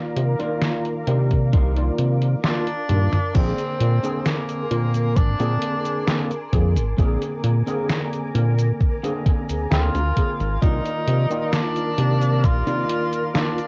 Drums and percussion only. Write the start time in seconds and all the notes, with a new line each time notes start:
0.17 closed hi-hat
0.40 closed hi-hat
0.62 snare, closed hi-hat
0.85 closed hi-hat
1.07 closed hi-hat
1.31 kick, closed hi-hat
1.53 kick, closed hi-hat
1.76 closed hi-hat
1.98 closed hi-hat
2.21 closed hi-hat
2.44 snare, closed hi-hat
2.67 closed hi-hat
2.89 closed hi-hat, high tom
3.13 closed hi-hat, mid tom
3.35 kick, closed hi-hat, crash, cabasa
3.58 closed hi-hat, cabasa
3.80 closed hi-hat
4.04 closed hi-hat, cabasa
4.26 snare, closed hi-hat, cabasa
4.49 closed hi-hat, cabasa
4.71 closed hi-hat
4.94 closed hi-hat, cabasa
5.17 kick, closed hi-hat, cabasa
5.40 closed hi-hat, cabasa
5.62 closed hi-hat
5.85 closed hi-hat, cabasa
6.08 snare, closed hi-hat, cabasa
6.31 closed hi-hat, cabasa
6.53 kick, closed hi-hat
6.77 closed hi-hat, cabasa
6.99 kick, closed hi-hat, cabasa
7.22 closed hi-hat, cabasa
7.44 closed hi-hat
7.67 closed hi-hat, cabasa
7.90 snare, closed hi-hat, cabasa
8.13 closed hi-hat, cabasa
8.35 closed hi-hat
8.58 closed hi-hat, cabasa
8.80 kick, closed hi-hat, cabasa
9.04 closed hi-hat, cabasa
9.26 kick, closed hi-hat
9.49 closed hi-hat, cabasa
9.72 snare, closed hi-hat, cabasa
9.95 closed hi-hat, cabasa
10.17 kick, closed hi-hat
10.40 closed hi-hat, cabasa
10.62 kick, closed hi-hat, cabasa
10.85 closed hi-hat, cabasa
11.07 closed hi-hat
11.31 closed hi-hat, cabasa
11.53 snare, closed hi-hat, cabasa
11.76 closed hi-hat, cabasa
11.98 closed hi-hat
12.22 closed hi-hat, cabasa
12.44 kick, closed hi-hat, cabasa
12.67 closed hi-hat, cabasa
12.89 closed hi-hat
13.13 closed hi-hat, cabasa
13.35 snare, closed hi-hat, cabasa
13.58 closed hi-hat, cabasa